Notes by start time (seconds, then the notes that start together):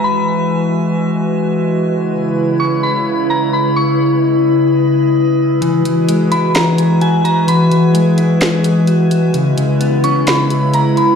Already playing: E3 G#3 F#4 B4 E5 G#5
0.04 B5
1.90 C#3 E4 B4 C#5 B5
2.60 C#6
2.83 B5
3.30 A#5
3.53 B5
3.76 D#5 C#6
5.62 E3 G#3 F#4 E5 G#5, closed hi-hat
5.85 E3, closed hi-hat
6.09 G#3, closed hi-hat
6.31 E4 B5, closed hi-hat
6.55 E3 A#5, snare, closed hi-hat
6.78 closed hi-hat
7.01 F#4 G#5, closed hi-hat
7.25 F#4 A#5, closed hi-hat
7.47 E3 G#4 B5, closed hi-hat
7.71 E3, closed hi-hat
7.94 G#3, closed hi-hat
8.18 E4, closed hi-hat
8.41 E3, snare, closed hi-hat
8.64 closed hi-hat
8.87 F#4, closed hi-hat
9.11 F#4, closed hi-hat
9.34 C#3 E4 C#5 B5, closed hi-hat
9.58 C#3, closed hi-hat
9.80 B3, closed hi-hat
10.04 C#4 C#6, closed hi-hat
10.27 C#3 B5, snare, closed hi-hat
10.50 closed hi-hat
10.74 E4 A#5, closed hi-hat
10.96 E4 B5, closed hi-hat